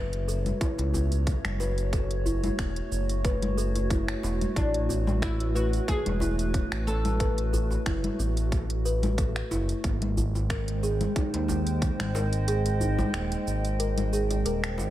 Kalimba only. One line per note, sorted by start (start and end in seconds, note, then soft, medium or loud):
0.28 0.59 A4 medium
0.61 0.78 E4 medium
0.94 1.58 B3 medium
1.60 1.70 B4 medium
1.93 2.24 A4 medium
2.26 2.43 E4 medium
2.59 3.23 B3 medium
3.25 3.35 B4 medium
3.58 3.89 A4 medium
3.90 4.07 E4 medium
4.23 4.56 B3 medium
4.56 4.73 E4 medium
4.89 5.54 B3 medium
5.55 5.65 B4 medium
5.88 6.20 A3 medium
6.21 6.38 E4 medium
6.54 7.19 B3 medium
7.20 7.30 B4 medium
7.53 7.85 A4 medium
7.86 8.03 E4 medium
8.19 8.84 B3 medium
8.85 8.95 B4 medium
9.18 9.50 A4 medium
9.51 9.68 E4 medium
9.84 10.49 A#3 medium
10.50 10.60 A#4 medium
10.83 11.14 G#4 medium
11.16 11.33 D#4 medium
11.49 12.13 A#3 medium
12.15 12.25 A#4 medium
12.48 12.79 G#4 medium
12.81 12.98 D#4 medium
13.14 13.78 A#3 medium
13.80 13.90 A#4 medium
14.13 14.30 G#4 medium
14.31 14.45 D#5 medium
14.46 14.62 A#4 loud